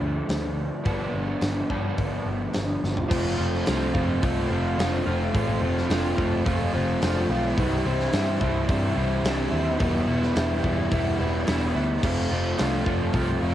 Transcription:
Already playing: D3 F3 A3 D4
0.01 D2
0.29 D2, snare, open hi-hat
0.84 G1 G2 D3 F3 B3 D4, kick, open hi-hat
1.14 G1
1.41 G1, snare, open hi-hat
1.70 G2 D3 F3 B3 D4, kick
1.98 G1, kick, open hi-hat
2.26 G1
2.53 G1, snare, open hi-hat
2.84 G1, snare
2.97 floor tom
3.09 F1 F3 A3 C4 F4, kick, crash
3.38 F1 A3 C4 F4
3.54 snare
3.66 C2 F3 A3 C4 F4, snare, open hi-hat
3.94 F1 A3 C4 F4, kick
4.22 C2 F3 A3 C4 F4, kick, open hi-hat
4.50 F1 A3 C4 F4
4.78 F1 F3 A3 C4 F4, snare, open hi-hat
5.06 F1 A3 C4 F4
5.34 A1 F3 A3 C4 F4, kick, open hi-hat
5.62 F1 A3 C4 F4
5.78 snare
5.89 F1 F3 A3 C4 F4, snare, open hi-hat
6.16 F1 A3 C4 F4, kick
6.44 F1 F3 A3 C4 F4, kick, open hi-hat
6.73 F1 A3 C4 F4
7.01 F1 F3 A3 C4 F4, snare, open hi-hat
7.29 B1 A3 C4 F4
7.57 C2 C3 E3 G3 C4 E4, kick, open hi-hat
7.84 C2 G3 C4 E4
8.00 snare
8.13 G2 E3 G3 C4 E4, snare, open hi-hat
8.40 C2 G3 C4 E4, kick
8.68 G2 C3 E3 G3 C4 E4, kick, open hi-hat
8.96 C2 G3 C4 E4
9.23 C2 E3 G3 C4 E4, snare, open hi-hat
9.51 D#2 G3 C4 E4
9.79 E1 E3 G3 B3 E4, kick, open hi-hat
10.07 E1 G3 B3 E4
10.23 snare
10.35 E1 E3 G3 B3 E4, snare, open hi-hat
10.62 E1 G3 B3 E4, kick
10.91 E1 E3 G3 B3 E4, kick, open hi-hat
11.19 E1 G3 B3 E4
11.47 E1 E3 G3 B3 E4, snare, open hi-hat
11.75 D2 G3 B3 E4
12.03 F1 F3 A3 C4 F4, kick, crash
12.31 F1 A3 C4 F4
12.58 C2 F3 A3 C4 F4, snare, open hi-hat
12.86 F1 A3 C4 F4, kick
13.13 C2 F3 A3 C4 F4, kick, open hi-hat
13.40 F1 A3 C4 F4

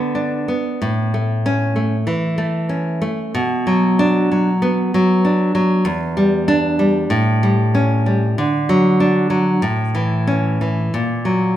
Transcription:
Already playing: D3 B3
0.15 D4
0.48 B3
0.82 A2
1.14 A3
1.46 C#4
1.76 A3
2.07 E3
2.38 A3
2.69 C#4
3.02 A3
3.35 B2
3.67 F#3
3.99 D4
4.32 F#3
4.62 B3
4.94 F#3
5.25 D4
5.55 F#3
5.85 E2
6.17 G3
6.48 D4
6.79 G3
7.10 A2
7.43 G3
7.75 C#4
8.06 G3
8.38 D3
8.69 F#3
9.00 D4
9.30 F#3
9.62 A2
9.95 E3
10.27 C#4
10.61 E3
10.94 A#2
11.25 F#3

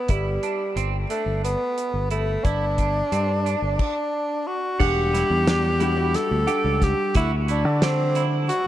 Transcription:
Already playing: B3
0.08 G1 G3 E4, kick, closed hi-hat
0.43 D4, closed hi-hat
0.76 G1 C4, closed hi-hat
1.10 A3 D4, closed hi-hat
1.26 G1
1.44 B3, closed hi-hat
1.78 closed hi-hat
1.94 G1
2.11 A3 E4, closed hi-hat
2.44 G1 D4 E4, kick, closed hi-hat
2.78 D4, kick, closed hi-hat
3.12 G2 C4, closed hi-hat
3.46 D4, closed hi-hat
3.62 G1
3.79 D4, kick, crash
4.47 F#4
4.79 E1 G3 D4 G4 F#5, kick, crash
5.14 E4, snare, closed hi-hat
5.30 E2
5.47 D4, snare, closed hi-hat
5.80 G3 D4 E4 F#4, closed hi-hat
5.96 G3 D4 F#4
6.14 A4, snare, closed hi-hat
6.31 D2
6.47 G3 D4 G4 F#5, closed hi-hat
6.64 C#2
6.82 G4, kick, snare, closed hi-hat
7.15 D2 E4 F#4, kick, closed hi-hat
7.48 D4 E4, closed hi-hat
7.65 D3
7.82 C4 D4, snare, closed hi-hat
8.15 E4, closed hi-hat
8.49 F#4, closed hi-hat

